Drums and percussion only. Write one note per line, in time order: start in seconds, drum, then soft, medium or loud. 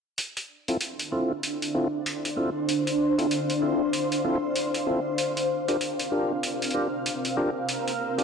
0.18 closed hi-hat medium
0.37 closed hi-hat soft
0.68 closed hi-hat soft
0.81 closed hi-hat medium
0.99 closed hi-hat soft
1.43 closed hi-hat medium
1.62 closed hi-hat soft
2.06 closed hi-hat medium
2.25 closed hi-hat medium
2.69 closed hi-hat medium
2.87 closed hi-hat medium
3.19 closed hi-hat soft
3.31 closed hi-hat medium
3.50 closed hi-hat soft
3.93 closed hi-hat medium
4.12 closed hi-hat soft
4.56 closed hi-hat medium
4.74 closed hi-hat medium
5.18 closed hi-hat medium
5.37 closed hi-hat medium
5.68 closed hi-hat soft
5.81 closed hi-hat medium
6.00 closed hi-hat medium
6.43 closed hi-hat medium
6.62 closed hi-hat soft
6.64 closed hi-hat soft
6.71 closed hi-hat soft
7.06 closed hi-hat medium
7.25 closed hi-hat soft
7.69 closed hi-hat medium
7.88 closed hi-hat soft
8.19 closed hi-hat soft